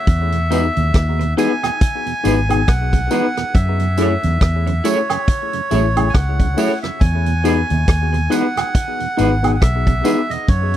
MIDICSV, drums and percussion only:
0, 0, Header, 1, 2, 480
1, 0, Start_track
1, 0, Key_signature, 4, "major"
1, 0, Tempo, 868307
1, 39, Time_signature, 4, 2, 24, 8
1, 5953, End_track
2, 0, Start_track
2, 0, Title_t, "Drums"
2, 39, Note_on_c, 9, 42, 77
2, 40, Note_on_c, 9, 36, 118
2, 94, Note_off_c, 9, 42, 0
2, 95, Note_off_c, 9, 36, 0
2, 179, Note_on_c, 9, 42, 53
2, 234, Note_off_c, 9, 42, 0
2, 284, Note_on_c, 9, 42, 67
2, 285, Note_on_c, 9, 54, 52
2, 340, Note_off_c, 9, 42, 0
2, 340, Note_off_c, 9, 54, 0
2, 423, Note_on_c, 9, 42, 49
2, 478, Note_off_c, 9, 42, 0
2, 520, Note_on_c, 9, 42, 93
2, 521, Note_on_c, 9, 36, 118
2, 527, Note_on_c, 9, 37, 120
2, 575, Note_off_c, 9, 42, 0
2, 576, Note_off_c, 9, 36, 0
2, 582, Note_off_c, 9, 37, 0
2, 666, Note_on_c, 9, 42, 50
2, 721, Note_off_c, 9, 42, 0
2, 763, Note_on_c, 9, 42, 82
2, 767, Note_on_c, 9, 54, 76
2, 818, Note_off_c, 9, 42, 0
2, 822, Note_off_c, 9, 54, 0
2, 904, Note_on_c, 9, 42, 55
2, 904, Note_on_c, 9, 76, 76
2, 905, Note_on_c, 9, 37, 60
2, 959, Note_off_c, 9, 42, 0
2, 959, Note_off_c, 9, 76, 0
2, 960, Note_off_c, 9, 37, 0
2, 1002, Note_on_c, 9, 36, 127
2, 1002, Note_on_c, 9, 42, 117
2, 1057, Note_off_c, 9, 36, 0
2, 1058, Note_off_c, 9, 42, 0
2, 1141, Note_on_c, 9, 42, 50
2, 1196, Note_off_c, 9, 42, 0
2, 1243, Note_on_c, 9, 54, 57
2, 1244, Note_on_c, 9, 42, 77
2, 1298, Note_off_c, 9, 54, 0
2, 1299, Note_off_c, 9, 42, 0
2, 1383, Note_on_c, 9, 42, 63
2, 1385, Note_on_c, 9, 76, 78
2, 1438, Note_off_c, 9, 42, 0
2, 1441, Note_off_c, 9, 76, 0
2, 1482, Note_on_c, 9, 36, 114
2, 1482, Note_on_c, 9, 37, 126
2, 1483, Note_on_c, 9, 42, 97
2, 1537, Note_off_c, 9, 36, 0
2, 1538, Note_off_c, 9, 37, 0
2, 1538, Note_off_c, 9, 42, 0
2, 1619, Note_on_c, 9, 36, 99
2, 1621, Note_on_c, 9, 42, 55
2, 1675, Note_off_c, 9, 36, 0
2, 1676, Note_off_c, 9, 42, 0
2, 1717, Note_on_c, 9, 54, 71
2, 1724, Note_on_c, 9, 42, 72
2, 1773, Note_off_c, 9, 54, 0
2, 1779, Note_off_c, 9, 42, 0
2, 1863, Note_on_c, 9, 42, 51
2, 1864, Note_on_c, 9, 37, 67
2, 1918, Note_off_c, 9, 42, 0
2, 1920, Note_off_c, 9, 37, 0
2, 1961, Note_on_c, 9, 36, 113
2, 1962, Note_on_c, 9, 42, 80
2, 2016, Note_off_c, 9, 36, 0
2, 2017, Note_off_c, 9, 42, 0
2, 2098, Note_on_c, 9, 42, 50
2, 2153, Note_off_c, 9, 42, 0
2, 2197, Note_on_c, 9, 54, 55
2, 2201, Note_on_c, 9, 42, 70
2, 2252, Note_off_c, 9, 54, 0
2, 2257, Note_off_c, 9, 42, 0
2, 2340, Note_on_c, 9, 42, 51
2, 2395, Note_off_c, 9, 42, 0
2, 2437, Note_on_c, 9, 42, 98
2, 2439, Note_on_c, 9, 36, 114
2, 2445, Note_on_c, 9, 37, 124
2, 2493, Note_off_c, 9, 42, 0
2, 2494, Note_off_c, 9, 36, 0
2, 2500, Note_off_c, 9, 37, 0
2, 2582, Note_on_c, 9, 42, 49
2, 2638, Note_off_c, 9, 42, 0
2, 2679, Note_on_c, 9, 42, 85
2, 2681, Note_on_c, 9, 54, 81
2, 2734, Note_off_c, 9, 42, 0
2, 2736, Note_off_c, 9, 54, 0
2, 2818, Note_on_c, 9, 76, 76
2, 2819, Note_on_c, 9, 42, 59
2, 2820, Note_on_c, 9, 37, 62
2, 2873, Note_off_c, 9, 76, 0
2, 2874, Note_off_c, 9, 42, 0
2, 2875, Note_off_c, 9, 37, 0
2, 2918, Note_on_c, 9, 36, 125
2, 2918, Note_on_c, 9, 42, 111
2, 2974, Note_off_c, 9, 36, 0
2, 2974, Note_off_c, 9, 42, 0
2, 3058, Note_on_c, 9, 42, 51
2, 3113, Note_off_c, 9, 42, 0
2, 3157, Note_on_c, 9, 54, 53
2, 3160, Note_on_c, 9, 42, 73
2, 3213, Note_off_c, 9, 54, 0
2, 3215, Note_off_c, 9, 42, 0
2, 3298, Note_on_c, 9, 42, 61
2, 3300, Note_on_c, 9, 76, 82
2, 3353, Note_off_c, 9, 42, 0
2, 3355, Note_off_c, 9, 76, 0
2, 3397, Note_on_c, 9, 36, 126
2, 3398, Note_on_c, 9, 37, 109
2, 3398, Note_on_c, 9, 42, 93
2, 3453, Note_off_c, 9, 36, 0
2, 3453, Note_off_c, 9, 37, 0
2, 3454, Note_off_c, 9, 42, 0
2, 3536, Note_on_c, 9, 36, 97
2, 3536, Note_on_c, 9, 42, 55
2, 3591, Note_off_c, 9, 36, 0
2, 3591, Note_off_c, 9, 42, 0
2, 3636, Note_on_c, 9, 54, 75
2, 3640, Note_on_c, 9, 46, 69
2, 3691, Note_off_c, 9, 54, 0
2, 3696, Note_off_c, 9, 46, 0
2, 3778, Note_on_c, 9, 42, 49
2, 3780, Note_on_c, 9, 37, 65
2, 3834, Note_off_c, 9, 42, 0
2, 3835, Note_off_c, 9, 37, 0
2, 3876, Note_on_c, 9, 36, 116
2, 3877, Note_on_c, 9, 42, 78
2, 3931, Note_off_c, 9, 36, 0
2, 3932, Note_off_c, 9, 42, 0
2, 4014, Note_on_c, 9, 42, 57
2, 4069, Note_off_c, 9, 42, 0
2, 4117, Note_on_c, 9, 42, 63
2, 4119, Note_on_c, 9, 54, 52
2, 4172, Note_off_c, 9, 42, 0
2, 4174, Note_off_c, 9, 54, 0
2, 4257, Note_on_c, 9, 42, 49
2, 4312, Note_off_c, 9, 42, 0
2, 4354, Note_on_c, 9, 42, 92
2, 4356, Note_on_c, 9, 36, 111
2, 4361, Note_on_c, 9, 37, 120
2, 4409, Note_off_c, 9, 42, 0
2, 4411, Note_off_c, 9, 36, 0
2, 4417, Note_off_c, 9, 37, 0
2, 4500, Note_on_c, 9, 42, 47
2, 4555, Note_off_c, 9, 42, 0
2, 4597, Note_on_c, 9, 42, 88
2, 4601, Note_on_c, 9, 54, 84
2, 4652, Note_off_c, 9, 42, 0
2, 4657, Note_off_c, 9, 54, 0
2, 4737, Note_on_c, 9, 42, 59
2, 4738, Note_on_c, 9, 37, 58
2, 4740, Note_on_c, 9, 76, 75
2, 4793, Note_off_c, 9, 42, 0
2, 4794, Note_off_c, 9, 37, 0
2, 4796, Note_off_c, 9, 76, 0
2, 4836, Note_on_c, 9, 36, 124
2, 4837, Note_on_c, 9, 42, 115
2, 4891, Note_off_c, 9, 36, 0
2, 4892, Note_off_c, 9, 42, 0
2, 4976, Note_on_c, 9, 42, 51
2, 5031, Note_off_c, 9, 42, 0
2, 5077, Note_on_c, 9, 54, 55
2, 5079, Note_on_c, 9, 42, 69
2, 5133, Note_off_c, 9, 54, 0
2, 5134, Note_off_c, 9, 42, 0
2, 5218, Note_on_c, 9, 42, 55
2, 5221, Note_on_c, 9, 76, 81
2, 5273, Note_off_c, 9, 42, 0
2, 5276, Note_off_c, 9, 76, 0
2, 5317, Note_on_c, 9, 36, 111
2, 5319, Note_on_c, 9, 37, 117
2, 5319, Note_on_c, 9, 42, 96
2, 5372, Note_off_c, 9, 36, 0
2, 5374, Note_off_c, 9, 37, 0
2, 5374, Note_off_c, 9, 42, 0
2, 5455, Note_on_c, 9, 36, 99
2, 5458, Note_on_c, 9, 42, 58
2, 5511, Note_off_c, 9, 36, 0
2, 5513, Note_off_c, 9, 42, 0
2, 5555, Note_on_c, 9, 54, 75
2, 5560, Note_on_c, 9, 42, 70
2, 5610, Note_off_c, 9, 54, 0
2, 5615, Note_off_c, 9, 42, 0
2, 5700, Note_on_c, 9, 42, 53
2, 5755, Note_off_c, 9, 42, 0
2, 5796, Note_on_c, 9, 36, 125
2, 5797, Note_on_c, 9, 42, 77
2, 5851, Note_off_c, 9, 36, 0
2, 5853, Note_off_c, 9, 42, 0
2, 5935, Note_on_c, 9, 42, 53
2, 5953, Note_off_c, 9, 42, 0
2, 5953, End_track
0, 0, End_of_file